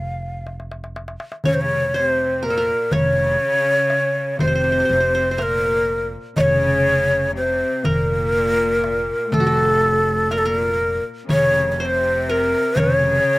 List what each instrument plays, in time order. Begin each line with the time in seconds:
Already playing: upright bass F1, ney F5
0.22 darbuka ka
0.47 darbuka tek
0.60 darbuka ka
0.72 darbuka tek
0.84 darbuka ka
0.96 darbuka tek
1.08 darbuka ka
1.20 darbuka tek
1.32 darbuka ka
1.44 upright bass F1, cello section C#3, qanun C#5, ney C#5, darbuka dum
1.54 ney C5
1.59 cello section C#3, ney C#5
1.94 cello section C3, qanun C5, ney C5
2.43 cello section A#2, qanun A#4, ney A#4, darbuka ka
2.50 qanun A4
2.57 qanun A#4
2.92 upright bass F1, cello section C#3, ney C#5, qanun C#5, darbuka dum
3.90 darbuka tek
4.39 upright bass F1, cello section C3, qanun C5, ney C5, darbuka dum
4.47 qanun C5
4.55 qanun C5
4.64 qanun C5
4.72 qanun C5
4.80 qanun C5
4.85 qanun C5, darbuka ka
4.89 upright bass F1, qanun C5
5.00 qanun C5
5.15 qanun C5
5.31 qanun C5
5.38 cello section A#2, qanun A#4, ney C5, darbuka tek
5.42 ney A#4
5.88 darbuka ka
6.36 upright bass F1, cello section C#3, qanun C#5, ney D#5, darbuka dum
6.41 ney C#5
7.35 cello section C3, ney C5, darbuka ka
7.84 upright bass F1, cello section A#2, qanun A#4, ney A#4, darbuka dum
8.84 darbuka tek
9.30 upright bass F1, cello section A2, qanun A4, darbuka dum
9.34 ney A4
9.40 qanun F#4
9.47 qanun A4
10.31 cello section A#2, qanun A#4, ney A#4, darbuka tek
10.38 ney A4
10.43 cello section A#2, qanun A#4, ney A#4
11.27 upright bass F1, cello section C#3, qanun C#5, darbuka dum
11.31 ney C#5
11.72 ney C#5
11.78 cello section C3, qanun C5, ney C#5
11.85 ney C5
12.29 qanun A#4, ney A#4
12.76 upright bass F1, cello section C#3, qanun C#5, ney C#5, darbuka dum